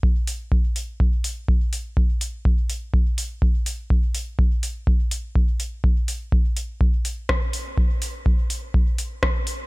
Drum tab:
HH |-o-o-o-o|-o-o-o-o|-o-o-o-o|-o-o-o-o|
SD |--------|--------|--------|------r-|
BD |o-o-o-o-|o-o-o-o-|o-o-o-o-|o-o-o-o-|

HH |-o-o-o-o|
SD |------r-|
BD |o-o-o-o-|